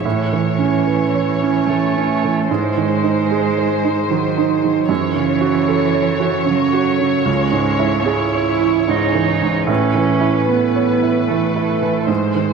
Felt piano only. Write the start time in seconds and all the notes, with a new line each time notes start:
0.05 A2
0.33 E3
0.58 C#4
0.87 B4
1.14 C#5
1.42 C#4
1.69 E3
1.97 C#4
2.24 E3
2.51 G#2
2.77 D#3
3.03 D#4
3.31 G#4
3.58 C5
3.85 D#4
4.11 D#3
4.38 D#4
4.64 D#3
4.89 F#2
5.15 C#3
5.41 F#4
5.68 A4
5.93 C#5
6.20 F#4
6.45 C#3
6.73 F#4
7.00 C#3
7.25 C#2
7.52 G#2
7.79 E4
8.05 G#4
8.34 C#5
8.62 E4
8.88 G#2
9.15 E3
9.42 G#2
9.67 A2
9.94 E3
10.21 E4
10.49 B4
10.76 C#5
11.03 E4
11.31 E3
11.56 E4
11.82 E3
12.07 G#2
12.35 D#3